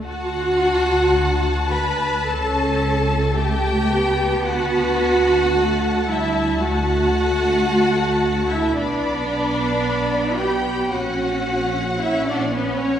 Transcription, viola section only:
\new Staff \with { instrumentName = "Viola section" } { \time 4/4 \key d \major \tempo 4 = 55 fis'4. b'8 a'4 g'4 | fis'4. e'8 fis'4.~ fis'16 e'16 | d'4. g'8 fis'4 e'16 d'16 b16 cis'16 | }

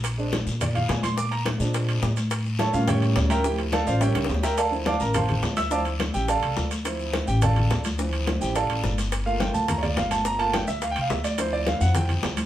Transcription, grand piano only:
\new Staff \with { instrumentName = "Grand piano" } { \time 4/4 \key d \minor \tempo 4 = 212 << { r2 d''8 f''8 aes''8 c'''8 | d'''8 bes''8 r2. | r4 <a' cis'' e'' a''>8 <f' f''>8 <g' cis'' e'' g''>4. <bes' e'' g'' bes''>8 | <g' g''>8 r8 <a' d'' f'' a''>8 <f' c'' d'' f''>8 <g' cis'' e'' g''>4. <bes' e'' g'' bes''>8 |
<a' d'' f'' a''>8 r8 <d'' f'' a'' d'''>8 <bes' bes''>8 <c'' f'' a'' c'''>4. <e'' e'''>8 | <d'' f'' a'' d'''>8 r4 <g' g''>8 <a' d'' f'' a''>4. r8 | r4. <g' g''>8 <a' d'' f'' a''>4. r8 | r4. <g' g''>8 <a' d'' f'' a''>4. r8 |
r8 f''8 g''8 a''8 bes''8 <cis'' d''>8 f''8 a''8 | bes''8 a''8 g''8 e''8 \tuplet 3/2 { f''8 g''8 f''8 } e''8 d''8 | c''8 d''8 f''8 fis''8 g''4. r8 | } \\ { r8 <aes c' d'>8 r2. | r4. <aes c' d'>4. r4 | r4. <g bes cis'>2~ <g bes cis'>8 | <f c' e'>8 r4. <g bes cis'>8 r4. |
r8 <f c' e'>8 r4 <f c' e'>8 r4. | <f c' e'>8 r2. r8 | <f c' e'>4. r2 r8 | <e f c'>4. <f c' e'>8 r2 |
r8 <a bes f'>2.~ <a bes f'>8~ | <a bes f'>8 <a bes f'>8 r2. | <f c' e'>1 | } >> }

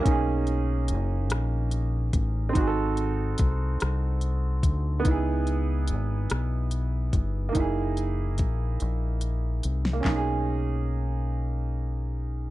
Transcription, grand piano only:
\new Staff \with { instrumentName = "Grand piano" } { \time 6/8 \key b \major \tempo 4. = 48 <ais cis' dis' gis'>2. | <bis dis' fis' gis' a'>2. | <b dis' e' gis'>2. | <ais dis' e' gis'>2. |
<ais cis' dis' gis'>2. | }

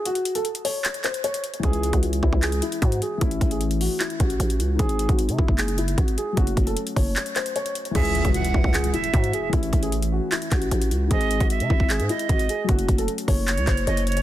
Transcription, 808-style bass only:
\new Staff \with { instrumentName = "808-style bass" } { \clef bass \time 4/4 \key cis \minor \tempo 4 = 152 r1 | cis,8. cis,8. cis,16 cis,8. r8 gis,8 r8 | a,,8 a,,4~ a,,16 r8. a,,8 a,,8 cis,8 | gis,,8. gis,,8 bis,16 gis,,16 fis,,4~ fis,,16 gis,,8 r8 |
fis,,8 fis,,8 r8 fis,,8 r2 | cis,8. cis,8. cis,16 cis,8. r8 gis,8 r8 | a,,8 a,,4~ a,,16 r8. a,,8 a,,8 cis,8 | gis,,8. gis,,8 bis,16 gis,,8. gis,16 r8 gis,,8 r8 |
fis,,8 fis,,8 r8 fis,,8. cis,16 fis,,8 fis,,4 | }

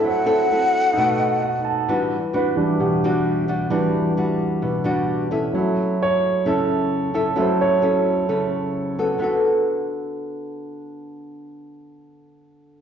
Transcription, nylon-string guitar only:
\new Staff \with { instrumentName = "Nylon-string guitar" } { \time 4/4 \key d \major \tempo 4 = 131 << { <c' e' a'>8 <c' e' a'>8 <c' e' a'>4 <a dis' fis'>4. r8 | <g d' fis'>8 r8 <g d' fis'>4 r8 <g d' fis'>4 <g d' fis'>8 | <g d' fis'>4 <g d' fis'>4. <g d' fis'>4 <cis' e' a'>8~ | <cis' e' a'>4 r4 <cis' e' a'>4. <cis' e' a'>8 |
<cis' e' a'>4 <cis' e' a'>4 <cis' e' a'>4. <b fis' a'>8~ | <b fis' a'>4 r2. | r1 | } \\ { fis2 b,2 | e2 b,2 | e2 b,2 | fis2 cis2 |
fis2 cis2 | <d b fis' a'>1~ | <d b fis' a'>1 | } >> }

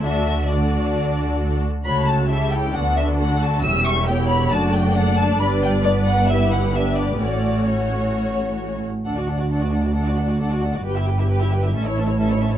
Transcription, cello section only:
\new Staff \with { instrumentName = "Cello section" } { \clef bass \time 4/4 \key d \mixolydian \tempo 4 = 134 d2.~ d8 r8 | \key d \major cis2 d2 | e,2 fis,2 | g,1 |
a,2.~ a,8 r8 | d,1 | g,2 a,2 | }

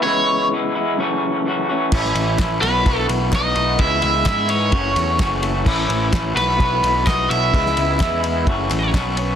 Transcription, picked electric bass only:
\new Staff \with { instrumentName = "Picked electric bass" } { \clef bass \time 4/4 \key fis \dorian \tempo 4 = 128 r1 | a,,8 a,,8 a,,8 b,,8 b,,8 b,,8 b,,8 b,,8 | cis,8 cis,8 r4 fis,,8 e,8 fis,,4 | a,,8 a,,8 a,,8 b,,8 b,,8 b,,8 b,,8 b,,8 |
cis,8 cis,8 r4 fis,,8 a,,8 b,,4 | }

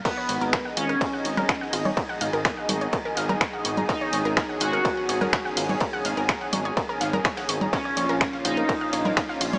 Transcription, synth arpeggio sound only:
\new Staff \with { instrumentName = "Synth arpeggio sound" } { \time 4/4 \key aes \dorian \tempo 4 = 125 <bes' bes''>16 <des'' des'''>16 <des'' des'''>16 <bes' bes''>16 <bes' bes''>16 <ges'' ges'''>16 <f' f''>16 <bes' bes''>16 <bes' bes''>16 <ges'' ges'''>16 <des'' des'''>16 <bes' bes''>16 <ges'' ges'''>16 <ges'' ges'''>16 <f' f''>16 <des'' des'''>16 | <bes' bes''>16 <ges'' ges'''>16 <f'' f'''>16 <bes' bes''>16 <bes' bes''>16 <ges'' ges'''>16 des'''16 <des'' des'''>16 <bes' bes''>16 <bes' bes''>16 <f'' f'''>16 <bes' bes''>16 des'''16 <ges'' ges'''>16 des'''16 <bes'' bes'''>16 | <bes' bes''>16 <des'' des'''>16 <des'' des'''>16 <bes' bes''>16 <bes' bes''>16 <ges'' ges'''>16 <f' f''>16 <bes' bes''>16 <bes' bes''>16 <ges'' ges'''>16 <des'' des'''>16 <bes' bes''>16 <ges'' ges'''>16 <ges'' ges'''>16 <f' f''>16 <des'' des'''>16 | <bes' bes''>16 <ges'' ges'''>16 <f'' f'''>16 <bes' bes''>16 <bes' bes''>16 <ges'' ges'''>16 des'''16 <des'' des'''>16 <bes' bes''>16 <bes' bes''>16 <f'' f'''>16 <bes' bes''>16 des'''16 <ges'' ges'''>16 des'''16 <bes'' bes'''>16 |
<bes' bes''>16 <des'' des'''>16 <des'' des'''>16 <bes' bes''>16 <bes' bes''>16 <f'' f'''>16 <f' f''>16 <bes' bes''>16 <bes' bes''>16 <f'' f'''>16 <des'' des'''>16 <bes' bes''>16 <f'' f'''>16 <f'' f'''>16 <f' f''>16 <des'' des'''>16 | }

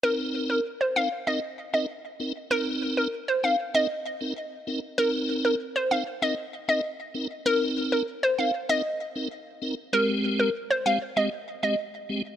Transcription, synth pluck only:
\new Staff \with { instrumentName = "Synth pluck" } { \time 4/4 \key c \minor \tempo 4 = 97 bes'16 r8 bes'16 r16 c''16 f''16 r16 ees''16 r8 ees''16 r4 | bes'16 r8 bes'16 r16 c''16 f''16 r16 ees''8. r4 r16 | bes'16 r8 bes'16 r16 c''16 f''16 r16 ees''16 r8 ees''16 r4 | bes'16 r8 bes'16 r16 c''16 f''16 r16 ees''8. r4 r16 |
bes'16 r8 bes'16 r16 c''16 f''16 r16 ees''16 r8 ees''16 r4 | }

